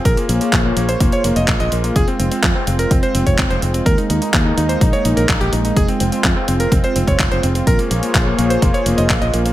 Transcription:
<<
  \new Staff \with { instrumentName = "Analog synth pad" } { \time 4/4 \key f \minor \tempo 4 = 126 << { <bes f' aes' c'' des''>1 | c'1 | <bes ees'>1 | <c' f'>1 |
<bes c'' des''>1 | } \\ { r1 | aes1~ | aes1~ | aes1 |
aes'1 | } >> }
  \new Staff \with { instrumentName = "Electric grand piano" } { \time 4/4 \key f \minor bes'16 bes16 bes16 bes16 r16 bes16 bes16 c''16 bes16 des''16 bes16 ees''16 bes16 ees''16 bes16 bes16 | aes'16 c'16 c'16 c'16 r16 c'16 c'16 bes'16 c'16 c''16 c'16 des''16 c'16 c''16 c'16 c'16 | bes'16 ees'16 ees'16 ees'16 r16 ees'16 ees'16 c''16 ees'16 des''16 ees'16 bes'16 ees'16 g'16 ees'16 ees'16 | aes'16 c'16 c'16 c'16 r16 c'16 c'16 bes'16 c'16 c''16 c'16 des''16 c'16 c''16 c'16 c'16 |
bes'16 bes16 bes16 bes16 r16 bes16 bes16 c''16 bes16 des''16 bes16 ees''16 bes16 ees''16 bes16 bes16 | }
  \new Staff \with { instrumentName = "Fingered electric bass" } { \clef bass \time 4/4 \key f \minor bes,,16 r16 bes,,16 r16 bes,,16 r16 bes,,16 r16 f,,16 r16 f,,16 f,,16 bes,,16 bes,,16 bes,,16 r16 | f,,16 r16 f,,16 r16 f,16 r16 f,,16 r16 f,,16 r16 f,,16 f,,16 f,,16 f,,16 f,,16 r16 | ees,16 r16 ees,16 r16 ees,16 r16 ees,16 r16 bes,,16 r16 bes,,16 bes,,16 bes,,16 bes,,16 bes,,16 r16 | f,,16 r16 f,,16 r16 f,16 r16 f,,16 r16 f,,16 r16 f,,16 f,,16 f,,16 f,,16 f,,16 r16 |
bes,,16 r16 bes,,16 r16 bes,,16 r16 bes,,16 r16 f,,16 r16 f,,16 f,,16 bes,,16 bes,,16 bes,,16 r16 | }
  \new DrumStaff \with { instrumentName = "Drums" } \drummode { \time 4/4 <hh bd>16 hh16 hh16 hh16 <hc hh bd>8 hh16 hh16 <hh bd>16 hh16 hh16 hh16 <hc hh bd>16 hh16 hh16 hh16 | <hh bd>16 hh16 hh16 hh16 <hc hh bd>8 hh16 hh16 <hh bd>16 hh16 hh16 <hh bd>16 <hc hh bd>16 hh16 hh16 hh16 | <hh bd>16 hh16 hh16 hh16 <hc hh bd>8 hh16 hh16 <hh bd>16 hh16 hh16 hh16 <hc hh bd>16 hh16 hh16 hh16 | <hh bd>16 hh16 hh16 hh16 <hc hh bd>8 hh16 hh16 <hh bd>16 hh16 hh16 <hh bd>16 <hc hh bd>16 hh16 hh16 hh16 |
<hh bd>16 hh16 hh16 hh16 <hc hh bd>8 hh16 hh16 <hh bd>16 hh16 hh16 hh16 <hc hh bd>16 hh16 hh16 hh16 | }
>>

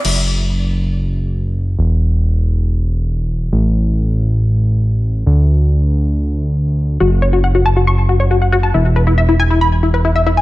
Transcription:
<<
  \new Staff \with { instrumentName = "Synth arpeggio sound" } { \time 4/4 \key fis \minor \tempo 4 = 138 r1 | r1 | r1 | r1 |
fis'16 r16 cis''16 fis'16 fis''16 fis'16 a''16 fis'16 cis'''16 r16 fis'16 cis''16 fis'16 fis''16 fis'16 a''16 | e'16 r16 b'16 e'16 e''16 e'16 gis''16 e'16 b''16 r16 e'16 b'16 e'16 e''16 e'16 gis''16 | }
  \new Staff \with { instrumentName = "Analog synth bass" } { \clef bass \time 4/4 \key fis \minor fis,,1 | e,,1 | a,,1 | d,1 |
fis,,1 | e,,1 | }
  \new DrumStaff \with { instrumentName = "Drums" } \drummode { \time 4/4 cymc4 r4 r4 r4 | r4 r4 r4 r4 | r4 r4 r4 r4 | r4 r4 r4 r4 |
r4 r4 r4 r4 | r4 r4 r4 r4 | }
>>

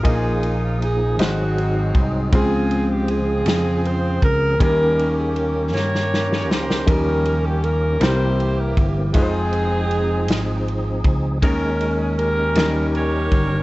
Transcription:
<<
  \new Staff \with { instrumentName = "Saxophone section" } { \time 6/8 \key ees \mixolydian \tempo 4. = 53 << { aes'8. f'16 aes'8 ges'4 r8 | aes'8. g'16 aes'4 c''8 bes'8 | bes'8. aes'16 bes'8 des''4 c''8 | bes'8. g'16 bes'8 c''8. bes'16 r8 |
aes'2~ aes'8 r8 | bes'8. aes'16 bes'4 des''4 | } \\ { <ees' f'>4. <c' ees'>4. | <c' f'>4 <c' f'>4. r8 | <des' g'>4. <g' bes'>4. | <des' g'>4. <e' g'>4. |
<c' ees'>2~ <c' ees'>8 r8 | des'4 <des' g'>4 <g' bes'>4 | } >> }
  \new Staff \with { instrumentName = "Grand piano" } { \time 6/8 \key ees \mixolydian <bes f' aes' ees''>4. <aes ees' ges' c''>4. | <aes c' f' c''>2. | <g des' ees' bes'>2. | <f g des' ees' bes'>4. <g c' e' bes'>4. |
<aes ees' f' ces'' c''>2. | <aes des' ees' bes'>4. <f g des' ees' bes'>4. | }
  \new Staff \with { instrumentName = "Grand piano" } { \clef bass \time 6/8 \key ees \mixolydian bes,4. aes,4. | des4. r4. | ees4. r4. | ees4. c4. |
r2. | ees4. ees4. | }
  \new Staff \with { instrumentName = "Tonewheel organ" } { \time 6/8 \key ees \mixolydian <f bes ees' aes'>4. <ges c' ees' aes'>4. | <des f c' aes'>2. | <ees bes des' g'>2.~ | <ees bes des' g'>4. <e bes c' ges' g'>4. |
<f c' ees' aes'>2. | <aes des' ees' bes'>4. <g des' ees' bes'>4. | }
  \new Staff \with { instrumentName = "Slap bass" } { \clef bass \time 6/8 \key ees \mixolydian bes,,4. aes,,4 c,8 | des,4. f,4 des,8 | ees,4. g,4 des,8 | ees,4. c,4 g,,8 |
f,,4. aes,,4 des,8 | ees,4. ees,4 g,,8 | }
  \new DrumStaff \with { instrumentName = "Drums" } \drummode { \time 6/8 <bd cymr>8 cymr8 cymr8 <cymr sn>8 cymr8 <bd cymr>8 | <bd cymr>8 cymr8 cymr8 <cymr sn>8 cymr8 <bd cymr>8 | <bd cymr>8 cymr8 cymr8 sn16 sn16 sn16 sn16 sn16 sn16 | <bd cymr>8 cymr8 cymr8 <cymr sn>8 cymr8 <bd cymr>8 |
<bd cymr>8 cymr8 cymr8 <cymr sn>8 cymr8 <bd cymr>8 | <bd cymr>8 cymr8 cymr8 <cymr sn>8 cymr8 <bd cymr>8 | }
>>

